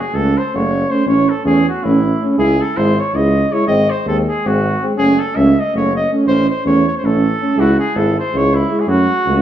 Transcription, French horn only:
0.13 0.29 C#4 medium
0.53 0.68 C#4 medium
0.90 1.05 C#4 medium
1.07 1.22 C#4 medium
1.45 1.60 C#4 medium
1.84 1.99 C#4 medium
2.21 2.36 C#4 medium
2.39 2.54 E4 medium
2.75 2.91 E4 medium
3.14 3.29 E4 medium
3.52 3.67 E4 medium
3.67 3.83 C4 medium
4.07 4.23 C4 medium
4.46 4.60 C4 soft
4.81 4.95 C4 medium
4.96 5.12 C#4 medium
5.36 5.51 C#4 medium
5.74 5.89 C#4 medium
6.11 6.26 C#4 medium
6.28 6.43 C#4 medium
6.65 6.81 C#4 medium
7.04 7.19 C#4 medium
7.40 7.56 C#4 medium
7.58 7.73 E4 medium
7.97 8.12 E4 medium
8.35 8.49 E4 medium
8.71 8.86 E4 medium
8.87 9.03 C#4 medium
9.25 9.41 C#4 medium

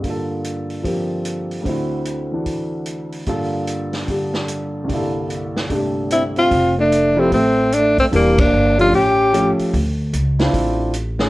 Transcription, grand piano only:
0.00 1.63 G2 soft
0.00 1.62 D3 soft
0.04 1.66 A#3 soft
0.04 1.67 F4 soft
0.10 1.69 A4 soft
0.83 1.65 F3 soft
0.83 1.65 C4 soft
0.83 1.66 G4 soft
0.83 1.67 A#4 soft
1.61 3.25 D2 soft
1.61 3.26 D3 soft
1.66 3.28 C4 soft
1.66 3.29 E4 soft
1.72 2.34 F#4 soft
2.32 3.27 E3 soft
2.32 3.28 D4 soft
2.32 3.29 F#4 soft
3.27 4.85 G2 soft
3.27 4.06 D3 soft
3.27 4.90 A#3 soft
3.27 4.90 F4 soft
3.27 4.90 A4 medium
4.07 4.87 D3 soft
4.07 4.89 G3 soft
4.07 4.90 D4 soft
4.07 4.90 G4 soft
4.84 6.48 C2 soft
4.84 5.68 G2 soft
4.88 6.51 D3 soft
4.88 6.52 A#3 soft
4.93 6.53 E4 soft
4.93 6.54 A4 soft
5.69 6.51 G2 soft
5.69 6.51 C3 soft
5.69 6.51 A3 soft
5.69 6.52 D4 soft
5.69 6.52 G4 soft
7.16 7.30 F3 medium
7.16 7.30 A3 soft
7.16 7.30 E4 soft
7.16 7.31 G4 medium
8.11 8.35 E3 medium
8.11 8.35 A#3 medium
8.11 8.36 D4 medium
8.11 8.36 G4 medium
8.78 8.91 F3 medium
8.78 8.91 A3 medium
8.78 8.92 C#4 soft
8.78 8.92 G4 medium
9.33 9.73 F3 medium
9.33 9.73 A3 medium
9.33 9.74 C#4 soft
9.33 9.74 G4 medium
10.39 10.91 C4 medium
10.39 10.91 D4 medium
10.39 10.91 E4 medium
10.39 10.92 F4 medium
11.19 11.29 D#3 medium
11.19 11.29 A3 medium
11.19 11.29 C#4 medium
11.19 11.29 G#4 medium

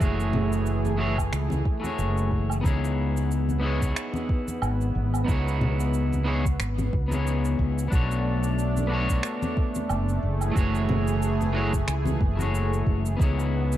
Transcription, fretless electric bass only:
0.01 1.29 F#1 medium
1.32 1.60 C#2 medium
1.98 2.60 F#1 loud
2.64 3.92 C#2 medium
4.62 4.90 G#1 medium
4.95 5.23 G#1 medium
5.28 6.56 C#2 medium
6.60 6.88 G#1 medium
6.93 7.55 C#2 medium
7.59 7.87 C#2 medium
7.92 9.20 B1 medium
9.90 10.18 F#1 medium
10.23 10.51 F#1 medium
10.56 11.84 F#1 medium
11.87 12.15 C#2 medium
12.21 12.83 F#1 medium
12.86 13.14 F#1 medium
13.19 13.77 C#2 medium

